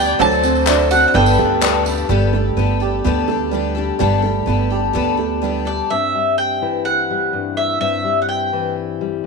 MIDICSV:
0, 0, Header, 1, 9, 480
1, 0, Start_track
1, 0, Key_signature, 1, "major"
1, 0, Tempo, 476190
1, 202, Time_signature, 4, 2, 24, 8
1, 9338, End_track
2, 0, Start_track
2, 0, Title_t, "Mandolin"
2, 0, Program_c, 0, 25
2, 0, Note_on_c, 0, 79, 87
2, 211, Note_off_c, 0, 79, 0
2, 216, Note_on_c, 0, 81, 106
2, 914, Note_off_c, 0, 81, 0
2, 918, Note_on_c, 0, 78, 89
2, 1074, Note_off_c, 0, 78, 0
2, 1088, Note_on_c, 0, 78, 63
2, 1154, Note_off_c, 0, 78, 0
2, 1158, Note_on_c, 0, 79, 85
2, 1833, Note_off_c, 0, 79, 0
2, 5713, Note_on_c, 0, 74, 71
2, 5951, Note_on_c, 0, 76, 77
2, 5958, Note_off_c, 0, 74, 0
2, 6397, Note_off_c, 0, 76, 0
2, 6430, Note_on_c, 0, 79, 84
2, 6902, Note_off_c, 0, 79, 0
2, 6906, Note_on_c, 0, 78, 81
2, 7590, Note_off_c, 0, 78, 0
2, 7631, Note_on_c, 0, 76, 62
2, 7858, Note_off_c, 0, 76, 0
2, 7870, Note_on_c, 0, 76, 81
2, 8254, Note_off_c, 0, 76, 0
2, 8283, Note_on_c, 0, 78, 52
2, 8349, Note_off_c, 0, 78, 0
2, 8353, Note_on_c, 0, 79, 71
2, 8802, Note_off_c, 0, 79, 0
2, 9338, End_track
3, 0, Start_track
3, 0, Title_t, "Fiddle"
3, 0, Program_c, 1, 110
3, 0, Note_on_c, 1, 74, 101
3, 154, Note_off_c, 1, 74, 0
3, 206, Note_on_c, 1, 72, 86
3, 1156, Note_on_c, 1, 71, 89
3, 1171, Note_off_c, 1, 72, 0
3, 1626, Note_off_c, 1, 71, 0
3, 1632, Note_on_c, 1, 71, 72
3, 2077, Note_off_c, 1, 71, 0
3, 9338, End_track
4, 0, Start_track
4, 0, Title_t, "Twelve-string acoustic guitar"
4, 0, Program_c, 2, 25
4, 0, Note_on_c, 2, 62, 44
4, 0, Note_on_c, 2, 67, 49
4, 0, Note_on_c, 2, 71, 51
4, 191, Note_on_c, 2, 50, 86
4, 195, Note_off_c, 2, 71, 0
4, 198, Note_on_c, 2, 57, 85
4, 199, Note_off_c, 2, 62, 0
4, 203, Note_off_c, 2, 67, 0
4, 203, Note_on_c, 2, 60, 87
4, 207, Note_on_c, 2, 66, 92
4, 216, Note_on_c, 2, 69, 91
4, 419, Note_off_c, 2, 69, 0
4, 431, Note_on_c, 2, 69, 51
4, 435, Note_off_c, 2, 50, 0
4, 437, Note_off_c, 2, 66, 0
4, 438, Note_off_c, 2, 57, 0
4, 441, Note_off_c, 2, 60, 0
4, 449, Note_on_c, 2, 66, 51
4, 463, Note_on_c, 2, 60, 41
4, 666, Note_off_c, 2, 60, 0
4, 667, Note_on_c, 2, 57, 60
4, 674, Note_off_c, 2, 69, 0
4, 678, Note_on_c, 2, 60, 57
4, 683, Note_off_c, 2, 66, 0
4, 695, Note_on_c, 2, 66, 59
4, 701, Note_on_c, 2, 69, 68
4, 902, Note_off_c, 2, 69, 0
4, 912, Note_off_c, 2, 57, 0
4, 914, Note_on_c, 2, 69, 55
4, 917, Note_off_c, 2, 60, 0
4, 921, Note_off_c, 2, 66, 0
4, 933, Note_on_c, 2, 66, 48
4, 946, Note_on_c, 2, 60, 42
4, 1147, Note_on_c, 2, 55, 80
4, 1154, Note_off_c, 2, 69, 0
4, 1154, Note_on_c, 2, 59, 71
4, 1155, Note_off_c, 2, 60, 0
4, 1159, Note_on_c, 2, 62, 82
4, 1163, Note_off_c, 2, 66, 0
4, 1167, Note_on_c, 2, 67, 89
4, 1168, Note_on_c, 2, 69, 83
4, 1374, Note_off_c, 2, 69, 0
4, 1386, Note_on_c, 2, 69, 54
4, 1390, Note_off_c, 2, 55, 0
4, 1391, Note_off_c, 2, 67, 0
4, 1394, Note_off_c, 2, 59, 0
4, 1396, Note_off_c, 2, 62, 0
4, 1403, Note_on_c, 2, 67, 47
4, 1420, Note_on_c, 2, 62, 41
4, 1620, Note_on_c, 2, 59, 59
4, 1621, Note_off_c, 2, 62, 0
4, 1629, Note_off_c, 2, 69, 0
4, 1633, Note_on_c, 2, 62, 61
4, 1634, Note_off_c, 2, 67, 0
4, 1646, Note_on_c, 2, 67, 64
4, 1656, Note_on_c, 2, 69, 68
4, 1849, Note_off_c, 2, 69, 0
4, 1861, Note_on_c, 2, 69, 53
4, 1866, Note_off_c, 2, 59, 0
4, 1872, Note_off_c, 2, 62, 0
4, 1872, Note_off_c, 2, 67, 0
4, 1884, Note_on_c, 2, 67, 54
4, 1896, Note_on_c, 2, 62, 50
4, 2105, Note_off_c, 2, 62, 0
4, 2106, Note_off_c, 2, 69, 0
4, 2106, Note_on_c, 2, 55, 82
4, 2110, Note_off_c, 2, 67, 0
4, 2112, Note_on_c, 2, 59, 87
4, 2117, Note_on_c, 2, 62, 91
4, 2122, Note_on_c, 2, 67, 89
4, 2128, Note_on_c, 2, 69, 93
4, 2334, Note_off_c, 2, 69, 0
4, 2346, Note_on_c, 2, 69, 54
4, 2348, Note_off_c, 2, 55, 0
4, 2351, Note_off_c, 2, 59, 0
4, 2353, Note_off_c, 2, 62, 0
4, 2353, Note_off_c, 2, 67, 0
4, 2365, Note_on_c, 2, 67, 51
4, 2377, Note_on_c, 2, 62, 45
4, 2582, Note_off_c, 2, 62, 0
4, 2587, Note_off_c, 2, 69, 0
4, 2587, Note_on_c, 2, 59, 66
4, 2595, Note_on_c, 2, 62, 60
4, 2597, Note_off_c, 2, 67, 0
4, 2610, Note_on_c, 2, 67, 64
4, 2615, Note_on_c, 2, 69, 67
4, 2811, Note_off_c, 2, 69, 0
4, 2823, Note_on_c, 2, 69, 57
4, 2828, Note_off_c, 2, 59, 0
4, 2831, Note_off_c, 2, 62, 0
4, 2832, Note_off_c, 2, 67, 0
4, 2844, Note_on_c, 2, 67, 51
4, 2855, Note_on_c, 2, 62, 43
4, 3065, Note_off_c, 2, 69, 0
4, 3068, Note_on_c, 2, 55, 85
4, 3069, Note_off_c, 2, 62, 0
4, 3076, Note_off_c, 2, 67, 0
4, 3078, Note_on_c, 2, 59, 79
4, 3082, Note_on_c, 2, 62, 77
4, 3089, Note_on_c, 2, 67, 87
4, 3095, Note_on_c, 2, 69, 84
4, 3291, Note_off_c, 2, 69, 0
4, 3303, Note_on_c, 2, 69, 56
4, 3308, Note_off_c, 2, 55, 0
4, 3308, Note_off_c, 2, 67, 0
4, 3313, Note_off_c, 2, 59, 0
4, 3314, Note_off_c, 2, 62, 0
4, 3321, Note_on_c, 2, 67, 56
4, 3339, Note_on_c, 2, 62, 47
4, 3542, Note_off_c, 2, 62, 0
4, 3542, Note_on_c, 2, 59, 60
4, 3545, Note_off_c, 2, 69, 0
4, 3554, Note_off_c, 2, 67, 0
4, 3554, Note_on_c, 2, 62, 65
4, 3567, Note_on_c, 2, 67, 60
4, 3574, Note_on_c, 2, 69, 75
4, 3765, Note_off_c, 2, 69, 0
4, 3777, Note_on_c, 2, 69, 53
4, 3784, Note_off_c, 2, 59, 0
4, 3784, Note_off_c, 2, 67, 0
4, 3790, Note_off_c, 2, 62, 0
4, 3796, Note_on_c, 2, 67, 54
4, 3811, Note_on_c, 2, 62, 50
4, 4022, Note_off_c, 2, 69, 0
4, 4022, Note_on_c, 2, 55, 90
4, 4023, Note_off_c, 2, 62, 0
4, 4029, Note_off_c, 2, 67, 0
4, 4031, Note_on_c, 2, 59, 94
4, 4035, Note_on_c, 2, 62, 89
4, 4041, Note_on_c, 2, 67, 86
4, 4046, Note_on_c, 2, 69, 92
4, 4242, Note_off_c, 2, 69, 0
4, 4254, Note_on_c, 2, 69, 60
4, 4264, Note_off_c, 2, 55, 0
4, 4264, Note_off_c, 2, 67, 0
4, 4269, Note_off_c, 2, 59, 0
4, 4270, Note_off_c, 2, 62, 0
4, 4276, Note_on_c, 2, 67, 48
4, 4292, Note_on_c, 2, 62, 48
4, 4494, Note_on_c, 2, 59, 62
4, 4497, Note_off_c, 2, 62, 0
4, 4500, Note_off_c, 2, 69, 0
4, 4509, Note_off_c, 2, 67, 0
4, 4509, Note_on_c, 2, 62, 61
4, 4521, Note_on_c, 2, 67, 67
4, 4531, Note_on_c, 2, 69, 64
4, 4729, Note_off_c, 2, 69, 0
4, 4740, Note_off_c, 2, 59, 0
4, 4742, Note_on_c, 2, 69, 55
4, 4745, Note_off_c, 2, 67, 0
4, 4747, Note_off_c, 2, 62, 0
4, 4757, Note_on_c, 2, 67, 50
4, 4774, Note_on_c, 2, 62, 44
4, 4973, Note_on_c, 2, 55, 74
4, 4976, Note_off_c, 2, 62, 0
4, 4982, Note_off_c, 2, 67, 0
4, 4984, Note_off_c, 2, 69, 0
4, 4986, Note_on_c, 2, 59, 78
4, 4988, Note_on_c, 2, 62, 80
4, 4994, Note_on_c, 2, 67, 78
4, 4998, Note_on_c, 2, 69, 90
4, 5202, Note_off_c, 2, 69, 0
4, 5214, Note_on_c, 2, 69, 57
4, 5220, Note_off_c, 2, 55, 0
4, 5220, Note_off_c, 2, 67, 0
4, 5226, Note_off_c, 2, 59, 0
4, 5227, Note_off_c, 2, 62, 0
4, 5232, Note_on_c, 2, 67, 44
4, 5249, Note_on_c, 2, 62, 44
4, 5459, Note_off_c, 2, 62, 0
4, 5459, Note_on_c, 2, 59, 59
4, 5460, Note_off_c, 2, 69, 0
4, 5469, Note_off_c, 2, 67, 0
4, 5471, Note_on_c, 2, 62, 57
4, 5483, Note_on_c, 2, 67, 62
4, 5491, Note_on_c, 2, 69, 68
4, 5684, Note_off_c, 2, 69, 0
4, 5696, Note_on_c, 2, 69, 46
4, 5702, Note_off_c, 2, 67, 0
4, 5703, Note_off_c, 2, 59, 0
4, 5709, Note_off_c, 2, 62, 0
4, 5714, Note_on_c, 2, 67, 45
4, 5729, Note_on_c, 2, 62, 45
4, 5942, Note_off_c, 2, 69, 0
4, 5951, Note_off_c, 2, 67, 0
4, 5959, Note_off_c, 2, 62, 0
4, 9338, End_track
5, 0, Start_track
5, 0, Title_t, "Upright piano"
5, 0, Program_c, 3, 0
5, 0, Control_c, 3, 64, 127
5, 0, Note_on_c, 3, 31, 62
5, 0, Note_on_c, 3, 43, 66
5, 0, Note_on_c, 3, 55, 69
5, 0, Note_on_c, 3, 62, 64
5, 0, Note_on_c, 3, 71, 65
5, 0, Note_on_c, 3, 74, 80
5, 163, Note_off_c, 3, 31, 0
5, 164, Note_off_c, 3, 43, 0
5, 196, Note_on_c, 3, 50, 64
5, 198, Note_on_c, 3, 54, 95
5, 198, Note_on_c, 3, 69, 85
5, 199, Note_on_c, 3, 60, 86
5, 200, Note_on_c, 3, 38, 63
5, 201, Note_off_c, 3, 74, 0
5, 201, Note_on_c, 3, 74, 100
5, 213, Control_c, 3, 64, 0
5, 214, Note_off_c, 3, 62, 0
5, 214, Note_off_c, 3, 71, 0
5, 223, Note_off_c, 3, 55, 0
5, 414, Control_c, 3, 64, 127
5, 518, Note_off_c, 3, 54, 0
5, 518, Note_off_c, 3, 69, 0
5, 519, Note_off_c, 3, 60, 0
5, 520, Note_off_c, 3, 74, 0
5, 668, Note_on_c, 3, 54, 71
5, 670, Note_on_c, 3, 69, 65
5, 672, Note_on_c, 3, 60, 66
5, 675, Note_on_c, 3, 76, 78
5, 992, Note_off_c, 3, 54, 0
5, 993, Note_off_c, 3, 69, 0
5, 994, Note_off_c, 3, 60, 0
5, 995, Note_off_c, 3, 76, 0
5, 1113, Note_off_c, 3, 50, 0
5, 1115, Note_off_c, 3, 38, 0
5, 1150, Note_on_c, 3, 59, 67
5, 1151, Note_on_c, 3, 43, 60
5, 1151, Note_on_c, 3, 55, 72
5, 1152, Note_on_c, 3, 69, 67
5, 1153, Note_on_c, 3, 31, 60
5, 1153, Note_on_c, 3, 74, 79
5, 1170, Control_c, 3, 64, 0
5, 1337, Control_c, 3, 64, 127
5, 1471, Note_off_c, 3, 59, 0
5, 1472, Note_off_c, 3, 55, 0
5, 1473, Note_off_c, 3, 69, 0
5, 1473, Note_off_c, 3, 74, 0
5, 1625, Note_on_c, 3, 55, 67
5, 1628, Note_on_c, 3, 59, 64
5, 1629, Note_on_c, 3, 69, 63
5, 1629, Note_on_c, 3, 74, 76
5, 1948, Note_off_c, 3, 55, 0
5, 1949, Note_off_c, 3, 59, 0
5, 1950, Note_off_c, 3, 69, 0
5, 1950, Note_off_c, 3, 74, 0
5, 2069, Note_off_c, 3, 43, 0
5, 2070, Note_off_c, 3, 31, 0
5, 2123, Control_c, 3, 64, 0
5, 9338, End_track
6, 0, Start_track
6, 0, Title_t, "Upright piano"
6, 0, Program_c, 4, 0
6, 0, Note_on_c, 4, 59, 81
6, 0, Note_on_c, 4, 62, 96
6, 199, Note_on_c, 4, 54, 89
6, 200, Note_off_c, 4, 62, 0
6, 203, Note_off_c, 4, 59, 0
6, 436, Note_on_c, 4, 60, 80
6, 677, Note_on_c, 4, 62, 82
6, 921, Note_on_c, 4, 66, 80
6, 1154, Note_off_c, 4, 60, 0
6, 1155, Note_off_c, 4, 54, 0
6, 1155, Note_off_c, 4, 62, 0
6, 1155, Note_on_c, 4, 59, 90
6, 1158, Note_off_c, 4, 66, 0
6, 1396, Note_on_c, 4, 57, 82
6, 2109, Note_on_c, 4, 55, 77
6, 2111, Note_off_c, 4, 59, 0
6, 2112, Note_off_c, 4, 57, 0
6, 2349, Note_on_c, 4, 57, 74
6, 2590, Note_on_c, 4, 59, 72
6, 2833, Note_on_c, 4, 67, 72
6, 3053, Note_off_c, 4, 59, 0
6, 3067, Note_off_c, 4, 55, 0
6, 3068, Note_on_c, 4, 59, 81
6, 3291, Note_off_c, 4, 57, 0
6, 3306, Note_on_c, 4, 57, 77
6, 3542, Note_on_c, 4, 55, 71
6, 3789, Note_off_c, 4, 67, 0
6, 4009, Note_off_c, 4, 55, 0
6, 4024, Note_on_c, 4, 55, 82
6, 4026, Note_off_c, 4, 59, 0
6, 4250, Note_off_c, 4, 57, 0
6, 4265, Note_on_c, 4, 57, 72
6, 4503, Note_on_c, 4, 59, 72
6, 4747, Note_on_c, 4, 67, 70
6, 4975, Note_off_c, 4, 59, 0
6, 4985, Note_off_c, 4, 55, 0
6, 4991, Note_on_c, 4, 59, 81
6, 5214, Note_off_c, 4, 57, 0
6, 5229, Note_on_c, 4, 57, 66
6, 5465, Note_on_c, 4, 55, 67
6, 5708, Note_off_c, 4, 67, 0
6, 5947, Note_off_c, 4, 55, 0
6, 5949, Note_off_c, 4, 57, 0
6, 5950, Note_off_c, 4, 59, 0
6, 9338, End_track
7, 0, Start_track
7, 0, Title_t, "Steel-string acoustic guitar"
7, 0, Program_c, 5, 25
7, 5952, Note_on_c, 5, 43, 51
7, 5959, Note_on_c, 5, 60, 44
7, 6197, Note_on_c, 5, 55, 40
7, 6669, Note_on_c, 5, 52, 46
7, 6676, Note_on_c, 5, 64, 46
7, 7158, Note_off_c, 5, 55, 0
7, 7162, Note_on_c, 5, 55, 45
7, 7386, Note_off_c, 5, 43, 0
7, 7390, Note_on_c, 5, 43, 49
7, 7845, Note_off_c, 5, 52, 0
7, 7850, Note_off_c, 5, 60, 0
7, 7862, Note_off_c, 5, 43, 0
7, 7866, Note_on_c, 5, 43, 54
7, 7872, Note_on_c, 5, 60, 46
7, 8109, Note_off_c, 5, 55, 0
7, 8113, Note_on_c, 5, 55, 42
7, 8585, Note_off_c, 5, 64, 0
7, 8594, Note_on_c, 5, 52, 47
7, 8598, Note_on_c, 5, 64, 53
7, 9077, Note_off_c, 5, 55, 0
7, 9081, Note_on_c, 5, 55, 48
7, 9309, Note_off_c, 5, 43, 0
7, 9338, Note_off_c, 5, 52, 0
7, 9338, Note_off_c, 5, 55, 0
7, 9338, Note_off_c, 5, 60, 0
7, 9338, Note_off_c, 5, 64, 0
7, 9338, End_track
8, 0, Start_track
8, 0, Title_t, "Upright bass"
8, 0, Program_c, 6, 32
8, 0, Note_on_c, 6, 38, 83
8, 121, Note_off_c, 6, 38, 0
8, 199, Note_on_c, 6, 38, 97
8, 1048, Note_off_c, 6, 38, 0
8, 1154, Note_on_c, 6, 31, 96
8, 1367, Note_off_c, 6, 31, 0
8, 1397, Note_on_c, 6, 38, 85
8, 2033, Note_off_c, 6, 38, 0
8, 2109, Note_on_c, 6, 31, 96
8, 2535, Note_off_c, 6, 31, 0
8, 2589, Note_on_c, 6, 31, 77
8, 3014, Note_off_c, 6, 31, 0
8, 3074, Note_on_c, 6, 38, 90
8, 3923, Note_off_c, 6, 38, 0
8, 4031, Note_on_c, 6, 31, 98
8, 4455, Note_off_c, 6, 31, 0
8, 4507, Note_on_c, 6, 31, 79
8, 4933, Note_off_c, 6, 31, 0
8, 4988, Note_on_c, 6, 38, 85
8, 5841, Note_off_c, 6, 38, 0
8, 9338, End_track
9, 0, Start_track
9, 0, Title_t, "Drums"
9, 199, Note_on_c, 9, 54, 29
9, 300, Note_off_c, 9, 54, 0
9, 316, Note_on_c, 9, 54, 33
9, 417, Note_off_c, 9, 54, 0
9, 438, Note_on_c, 9, 54, 79
9, 539, Note_off_c, 9, 54, 0
9, 558, Note_on_c, 9, 54, 31
9, 659, Note_off_c, 9, 54, 0
9, 671, Note_on_c, 9, 39, 96
9, 678, Note_on_c, 9, 54, 93
9, 772, Note_off_c, 9, 39, 0
9, 778, Note_off_c, 9, 54, 0
9, 799, Note_on_c, 9, 54, 29
9, 900, Note_off_c, 9, 54, 0
9, 915, Note_on_c, 9, 54, 75
9, 1016, Note_off_c, 9, 54, 0
9, 1038, Note_on_c, 9, 54, 29
9, 1139, Note_off_c, 9, 54, 0
9, 1273, Note_on_c, 9, 54, 70
9, 1373, Note_off_c, 9, 54, 0
9, 1628, Note_on_c, 9, 54, 87
9, 1635, Note_on_c, 9, 39, 93
9, 1729, Note_off_c, 9, 54, 0
9, 1736, Note_off_c, 9, 39, 0
9, 1874, Note_on_c, 9, 54, 80
9, 1975, Note_off_c, 9, 54, 0
9, 1994, Note_on_c, 9, 54, 28
9, 2095, Note_off_c, 9, 54, 0
9, 9338, End_track
0, 0, End_of_file